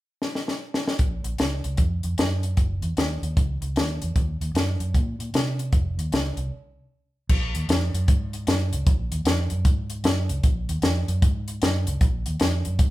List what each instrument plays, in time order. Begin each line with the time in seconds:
0.22 snare
0.35 snare
0.48 snare
0.74 snare
0.88 snare
0.99 fingered electric bass A#1, kick, closed hi-hat
1.24 fingered electric bass A#1, closed hi-hat
1.38 fingered electric bass C#2, snare, closed hi-hat
1.64 fingered electric bass C#2, closed hi-hat
1.77 fingered electric bass F2, kick, closed hi-hat
2.03 fingered electric bass F2, closed hi-hat
2.18 fingered electric bass F#2, snare, closed hi-hat
2.43 closed hi-hat
2.57 fingered electric bass F#1, kick, closed hi-hat
2.82 fingered electric bass E2, closed hi-hat
2.97 fingered electric bass D#2, snare, closed hi-hat
3.22 fingered electric bass D#2, closed hi-hat
3.37 fingered electric bass C#2, kick, closed hi-hat
3.61 fingered electric bass C#2, closed hi-hat
3.76 fingered electric bass D#2, snare, closed hi-hat
4.02 fingered electric bass E2, closed hi-hat
4.16 fingered electric bass D#2, kick, closed hi-hat
4.41 fingered electric bass D#2, closed hi-hat
4.54 fingered electric bass F#2, snare, closed hi-hat
4.80 fingered electric bass F#2, closed hi-hat
4.94 fingered electric bass A#2, kick, closed hi-hat
5.19 fingered electric bass A#2, closed hi-hat
5.34 fingered electric bass C3, snare, closed hi-hat
5.59 closed hi-hat
5.72 fingered electric bass F1, kick, closed hi-hat
5.97 fingered electric bass D#2, closed hi-hat
6.12 fingered electric bass C#2, snare, closed hi-hat
6.36 fingered electric bass C2, closed hi-hat
7.29 fingered electric bass A#1, kick, crash
7.55 fingered electric bass D#2, closed hi-hat
7.69 fingered electric bass F2, snare, closed hi-hat
7.94 fingered electric bass F#2, closed hi-hat
8.08 fingered electric bass G#2, kick, closed hi-hat
8.33 closed hi-hat
8.47 fingered electric bass F#2, snare, closed hi-hat
8.73 fingered electric bass C#2, closed hi-hat
8.87 fingered electric bass A#1, kick, closed hi-hat
9.11 fingered electric bass D#2, closed hi-hat
9.25 fingered electric bass F2, snare, closed hi-hat
9.50 fingered electric bass F#2, closed hi-hat
9.65 fingered electric bass G#2, kick, closed hi-hat
9.90 closed hi-hat
10.04 fingered electric bass F#2, snare, closed hi-hat
10.29 fingered electric bass C#2, closed hi-hat
10.43 fingered electric bass A#1, kick, closed hi-hat
10.69 fingered electric bass D#2, closed hi-hat
10.82 fingered electric bass F2, snare, closed hi-hat
11.08 fingered electric bass F#2, closed hi-hat
11.22 fingered electric bass G#2, kick, closed hi-hat
11.48 closed hi-hat
11.62 fingered electric bass F#2, snare, closed hi-hat
11.87 fingered electric bass C#2, closed hi-hat
12.01 fingered electric bass A#1, kick, closed hi-hat
12.26 fingered electric bass D#2, closed hi-hat
12.40 fingered electric bass F2, snare, closed hi-hat
12.65 fingered electric bass F#2, closed hi-hat
12.79 fingered electric bass G#2, kick, closed hi-hat